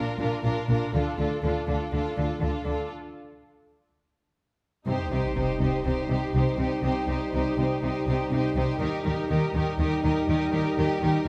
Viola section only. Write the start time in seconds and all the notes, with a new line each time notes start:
Already playing: D4
0.21 D4
0.45 D4
0.68 D4
0.95 D4
1.20 D4
1.44 D4
1.69 D4
1.93 D4
2.16 D4
2.42 D4
2.67 D4
4.87 D#4
5.12 D#4
5.36 D#4
5.60 D#4
5.86 D#4
6.10 D#4
6.35 D#4
6.58 D#4
6.82 D#4
7.06 D#4
7.31 D#4
7.59 D#4
7.82 D#4
8.06 D#4
8.31 D#4
8.56 D#4
8.82 D#4
9.06 D#4
9.30 D#4
9.55 D#4
9.80 D#4
10.03 D#4
10.28 D#4
10.54 D#4
10.79 D#4
11.03 D#4